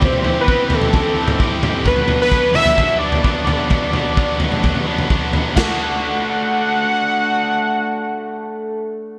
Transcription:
<<
  \new Staff \with { instrumentName = "Analog synth lead" } { \time 4/4 \key d \mixolydian \tempo 4 = 130 c''8. b'8. a'2 r8 | b'8. b'8. e''4 d''4 d''8~ | d''2.~ d''8 r8 | fis''1~ |
fis''1 | }
  \new Staff \with { instrumentName = "Overdriven electric guitar" } { \time 4/4 \key d \mixolydian <e c' e' g'>8 <e c' e' g'>8 <e c' e' g'>8 <e c' e' g'>8 <e c' e' g'>8 <e c' e' g'>8 <e c' e' g'>8 <e c' e' g'>8 | <fis b d'>8 <fis b d'>8 <fis b d'>8 <fis b d'>8 <fis b d'>8 <fis b d'>8 <fis b d'>8 <fis b d'>8 | <fis b d'>8 <fis b d'>8 <fis b d'>8 <fis b d'>8 <fis b d'>8 <fis b d'>8 <fis b d'>8 <fis b d'>8 | <a d' fis'>1~ |
<a d' fis'>1 | }
  \new DrumStaff \with { instrumentName = "Drums" } \drummode { \time 4/4 <bd tomfh>16 tomfh16 tomfh8 bd8 tomfh16 tomfh16 <bd tomfh>8. <tomfh toml>16 bd8 <tomfh toml>8 | <bd tomfh>16 tomfh16 tomfh8 bd8 tomfh16 tomfh16 <bd tomfh>8. tomfh16 bd8 tomfh8 | <bd tomfh>8 tomfh8 bd8 tomfh16 tomfh16 <bd tomfh>16 tomfh8 tomfh16 bd8 tomfh8 | <cymc bd sn>4 r4 r4 r4 |
r4 r4 r4 r4 | }
>>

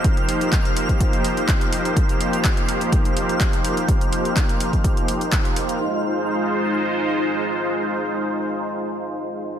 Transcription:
<<
  \new Staff \with { instrumentName = "Synth texture" } { \time 4/4 \key f \minor \tempo 4 = 125 f'''1~ | f'''1~ | f'''1 | r1 |
r1 | }
  \new Staff \with { instrumentName = "Supersaw synth" } { \time 4/4 \key f \minor <f bes ees' g' c''>1~ | <f bes ees' g' c''>1~ | <f bes ees' g' c''>1 | <aes ees' f' c''>1~ |
<aes ees' f' c''>1 | }
  \new DrumStaff \with { instrumentName = "Drums" } \drummode { \time 4/4 <hh bd>16 hh16 hho16 hh16 <hc hh bd>16 hh16 hho16 <hh bd>16 <hh bd>16 hh16 hho16 hh16 <hc hh bd>16 hh16 hho16 hh16 | <hh bd>16 hh16 hho16 hh16 <hc hh bd>16 hh16 hho16 hh16 <hh bd>16 hh16 hho16 hh16 <hc hh bd>16 hh16 hho16 hh16 | <hh bd>16 hh16 hho16 hh16 <hc hh bd>16 hh16 hho16 <hh bd>16 <hh bd>16 hh16 hho16 hh16 <hc hh bd>16 hh16 hho16 hh16 | r4 r4 r4 r4 |
r4 r4 r4 r4 | }
>>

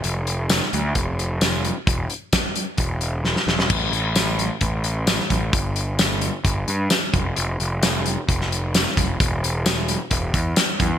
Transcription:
<<
  \new Staff \with { instrumentName = "Picked electric bass" } { \clef bass \time 4/4 \key f \lydian \tempo 4 = 131 f,,4. d,8 f,,2 | e,,8 r4. e,,4. e,,8 | a,,8 a,,4. a,,4. a,,8 | g,,2 g,,8 g,8 r8 f,,8 |
f,,8 f,,4. f,,4. f,,8 | e,,2 e,,8 e,8 r8 e,8 | }
  \new DrumStaff \with { instrumentName = "Drums" } \drummode { \time 4/4 hh8 hh8 <hh sn tamb>16 sn16 hh8 <hh bd>8 hh8 <hh sn tamb>8 hh8 | <hh bd>8 hh8 <hh bd sn tamb>8 hh8 <hh bd>8 hh8 sn16 sn16 sn16 sn16 | <cymc bd>8 hh8 <hh sn tamb>8 hh8 <hh bd>8 hh8 <hh sn tamb>16 sn16 <hh bd>8 | <hh bd>8 hh8 <hh sn tamb>8 hh8 <hh bd>8 hh8 <hh sn tamb>8 <hh bd>8 |
hh8 hh8 <hh sn tamb>8 hh8 <hh bd>16 sn16 hh8 <hh sn tamb>16 sn16 <hh bd>8 | <hh bd>8 hh8 <hh sn tamb>8 hh8 <hh bd>8 <hh bd>8 <hh sn tamb>8 <hh bd>8 | }
>>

